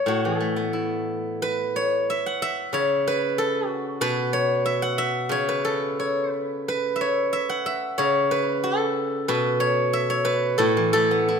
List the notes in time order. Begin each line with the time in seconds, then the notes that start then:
Already playing: B4 C#5
0.06 A2 F#4
0.25 E3
0.39 A3 A4
0.56 B3
0.73 E4
1.42 B4
1.76 C#5
2.10 E5
2.26 F#5
2.42 E5
2.73 C#3 C#5
3.07 B4
3.38 A4
3.68 F#4
4.01 B2 B4
4.33 C#5
4.66 E5
4.82 F#5
4.98 E5
5.29 C#3 C#5
5.49 B4
5.65 A4
6.00 C#5
6.31 B4
6.68 B4
6.96 E5
7.01 C#5
7.33 E5
7.49 F#5
7.66 E5
7.98 C#3 C#5
8.31 B4
8.64 A4
9.28 B2 B4
9.60 C#5
9.93 E5
10.10 C#5
10.25 B4
10.58 A2 A4
10.77 E3
10.93 A3 A4
11.11 B3
11.28 E4